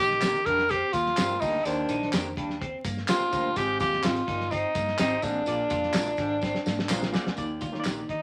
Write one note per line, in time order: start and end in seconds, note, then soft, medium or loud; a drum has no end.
0.00 0.33 A#1 loud
0.00 0.41 D3 medium
0.00 0.42 D#3 medium
0.00 0.15 D#4 medium
0.00 0.42 G4 medium
0.00 0.47 G4 loud
0.00 0.42 A#4 medium
0.00 0.45 D#5 medium
0.11 snare soft
0.21 0.35 A#3 medium
0.21 0.36 D4 medium
0.21 0.36 G4 medium
0.21 0.36 A#4 medium
0.21 snare loud
0.21 clap loud
0.21 closed hi-hat medium
0.21 tambourine medium
0.35 closed hi-hat soft
0.45 0.81 F2 loud
0.45 0.65 G2 medium
0.45 0.62 D4 medium
0.45 0.71 A#4 loud
0.45 kick medium
0.45 closed hi-hat medium
0.59 snare soft
0.69 0.86 C4 medium
0.69 0.95 G4 loud
0.69 kick medium
0.69 closed hi-hat medium
0.69 tambourine soft
0.93 1.11 D#2 medium
0.93 1.10 A#3 medium
0.93 1.42 F4 loud
0.93 kick medium
0.93 closed hi-hat medium
0.93 tambourine medium
1.06 snare soft
1.17 1.35 G2 medium
1.17 1.37 A#2 medium
1.17 1.30 A#3 medium
1.17 1.34 C4 medium
1.17 1.31 D4 medium
1.17 1.31 G4 medium
1.17 1.31 A#4 loud
1.17 snare loud
1.17 clap loud
1.17 closed hi-hat loud
1.17 tambourine loud
1.41 1.59 D2 loud
1.41 1.61 G2 medium
1.41 1.58 A#3 medium
1.41 1.58 D4 medium
1.41 1.66 D#4 medium
1.41 1.58 G4 medium
1.41 1.58 A#4 medium
1.41 1.59 D#5 medium
1.41 kick loud
1.41 open hi-hat soft
1.41 tambourine medium
1.64 1.83 D#2 medium
1.64 1.99 D#2 medium
1.64 2.33 D#3 medium
1.64 2.12 D4 medium
1.64 2.32 D4 medium
1.64 2.33 G4 medium
1.64 2.33 A#4 medium
1.64 2.33 C5 medium
1.64 closed hi-hat medium
1.64 tambourine soft
1.89 2.07 A#1 medium
1.89 2.05 D#4 medium
1.89 closed hi-hat medium
1.89 tambourine medium
2.02 snare soft
2.13 2.37 F2 medium
2.13 2.26 A#3 medium
2.13 2.26 D4 medium
2.13 2.26 G4 medium
2.13 2.26 A#4 medium
2.13 snare loud
2.13 clap loud
2.13 closed hi-hat medium
2.13 tambourine medium
2.37 2.72 D#2 medium
2.37 2.56 G2 medium
2.37 2.53 D4 medium
2.37 kick medium
2.37 closed hi-hat medium
2.50 snare soft
2.61 2.77 C4 medium
2.61 kick medium
2.61 closed hi-hat medium
2.84 3.02 G2 medium
2.84 3.01 A#3 medium
2.84 kick loud
2.84 closed hi-hat medium
2.84 tambourine medium
2.97 snare soft
3.08 3.28 A#2 medium
3.08 3.21 A#3 medium
3.08 3.24 C4 medium
3.08 3.21 D4 medium
3.08 3.59 F4 loud
3.08 3.22 G4 loud
3.08 3.22 A#4 loud
3.08 snare loud
3.08 clap loud
3.08 closed hi-hat medium
3.08 tambourine loud
3.21 muted fingered electric bass stroke medium
3.31 3.50 D2 medium
3.31 3.51 G2 medium
3.31 3.48 A#3 medium
3.31 3.48 D4 medium
3.31 3.49 G4 medium
3.31 3.49 A#4 medium
3.31 3.49 C5 medium
3.31 kick loud
3.31 closed hi-hat medium
3.31 tambourine medium
3.55 3.82 G#1 loud
3.55 4.23 G#2 medium
3.55 3.90 G#2 medium
3.55 4.23 C4 medium
3.55 4.23 G4 medium
3.55 3.80 G4 loud
3.55 4.23 G#4 medium
3.55 4.23 D#5 medium
3.55 kick loud
3.55 closed hi-hat medium
3.55 tambourine medium
3.80 3.98 D#2 medium
3.80 3.96 F4 medium
3.80 4.06 G4 loud
3.80 kick loud
3.80 closed hi-hat medium
3.80 tambourine medium
3.93 snare soft
4.03 4.21 G#1 loud
4.03 4.16 C4 medium
4.03 4.17 D#4 medium
4.03 4.53 F4 medium
4.03 4.17 G4 medium
4.03 4.17 C5 medium
4.03 snare loud
4.03 clap medium
4.03 closed hi-hat medium
4.03 tambourine loud
4.16 closed hi-hat medium
4.27 4.63 G1 medium
4.27 4.47 A#2 medium
4.27 4.43 D#4 medium
4.27 kick medium
4.27 closed hi-hat medium
4.40 snare soft
4.51 4.67 C4 medium
4.51 4.99 D#4 medium
4.51 kick medium
4.51 closed hi-hat medium
4.51 tambourine soft
4.75 4.92 G2 medium
4.75 4.91 A#3 medium
4.75 kick medium
4.75 closed hi-hat medium
4.75 tambourine medium
4.88 snare soft
4.98 5.16 G#1 medium
4.98 5.18 C3 medium
4.98 5.11 C4 medium
4.98 5.15 C4 medium
4.98 5.12 D#4 loud
4.98 5.24 D#4 medium
4.98 5.12 G4 medium
4.98 5.12 C5 loud
4.98 snare loud
4.98 clap loud
4.98 closed hi-hat medium
4.98 tambourine loud
5.22 5.41 A1 medium
5.22 5.42 G#2 medium
5.22 5.39 A#3 medium
5.22 5.39 C4 medium
5.22 7.14 D4 medium
5.22 5.40 G4 medium
5.22 5.40 G#4 medium
5.22 5.40 D#5 medium
5.22 kick loud
5.22 closed hi-hat medium
5.22 tambourine medium
5.46 5.64 A#1 loud
5.46 5.80 A#2 medium
5.46 6.14 A#2 medium
5.46 6.14 A#3 medium
5.46 6.14 F4 medium
5.46 6.14 G#4 medium
5.46 6.14 D5 medium
5.46 closed hi-hat medium
5.46 tambourine medium
5.70 5.88 F2 loud
5.70 5.86 F4 medium
5.70 kick loud
5.70 closed hi-hat medium
5.70 tambourine medium
5.83 snare soft
5.93 6.12 A#1 medium
5.93 6.07 G#3 medium
5.93 6.07 D4 medium
5.93 6.08 F4 medium
5.93 6.08 A#4 medium
5.93 snare loud
5.93 clap loud
5.93 closed hi-hat medium
5.93 tambourine medium
6.06 closed hi-hat medium
6.17 6.53 G#1 medium
6.17 6.37 G#2 medium
6.17 6.34 D4 medium
6.17 kick loud
6.17 closed hi-hat medium
6.17 tambourine soft
6.41 6.58 C4 medium
6.41 kick loud
6.41 snare medium
6.41 tambourine soft
6.55 snare medium
6.66 6.92 G#2 medium
6.66 6.82 A#3 medium
6.66 snare medium
6.66 tambourine medium
6.79 snare medium
6.89 7.16 A#1 loud
6.89 7.08 A#2 medium
6.89 7.02 G#3 medium
6.89 7.06 C4 medium
6.89 7.02 D4 medium
6.89 7.03 F4 medium
6.89 7.03 A#4 medium
6.89 snare medium
6.89 clap loud
6.89 tambourine loud
7.03 snare medium
7.12 7.32 G#2 medium
7.12 7.30 A#3 medium
7.12 7.29 A#3 medium
7.12 7.30 F4 medium
7.12 7.30 G#4 medium
7.12 7.31 D5 medium
7.12 snare loud
7.12 tambourine medium
7.26 7.34 D2 medium
7.26 snare loud
7.36 7.71 D#2 medium
7.36 7.55 D#2 medium
7.36 8.05 D#3 medium
7.36 7.62 A#3 medium
7.36 7.62 D#4 medium
7.36 7.63 G4 medium
7.36 7.63 D5 loud
7.36 kick loud
7.36 closed hi-hat medium
7.36 tambourine soft
7.61 7.79 D2 medium
7.61 7.77 F4 medium
7.61 kick medium
7.61 closed hi-hat medium
7.61 tambourine soft
7.72 8.15 A#3 medium
7.72 8.15 D#4 medium
7.72 8.16 G4 medium
7.72 7.79 C#5 medium
7.72 snare soft
7.80 8.19 D5 medium
7.84 8.03 A#1 medium
7.84 7.98 A#3 medium
7.84 7.98 D4 medium
7.84 7.99 G4 medium
7.84 7.99 A#4 medium
7.84 snare loud
7.84 clap medium
7.84 closed hi-hat medium
7.84 tambourine medium
8.09 8.22 D#3 medium
8.09 8.22 D#4 medium
8.09 kick medium
8.09 closed hi-hat medium